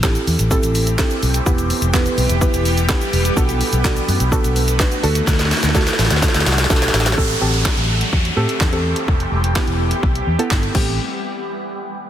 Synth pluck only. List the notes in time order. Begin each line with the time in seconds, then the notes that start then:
0.03 C4 E4 G4 A4
0.51 C4 E4 G4 A4
0.98 C4 E4 G4 A4
1.46 B3 E4 G4 B4
1.94 B3 E4 G4 B4
2.41 B3 E4 G4 B4
2.89 B3 E4 G4 B4
3.36 B3 D4 F#4 A4
3.84 B3 D4 F#4 A4
4.32 B3 D4 F#4 A4
4.79 B3 D4 F#4 B4
5.03 A3 D4 F#4 A4
5.75 A3 D4 F#4 A4
6.22 A3 D4 F#4 A4
6.70 A3 D4 F#4 A4
7.17 C4 G4 A4
7.41 C4 G4 A4
8.36 C4 G4 A4
8.72 C4 G4 A4
9.56 B3 E4 G4
10.39 B3 E4 A4
10.75 A3 C4 G4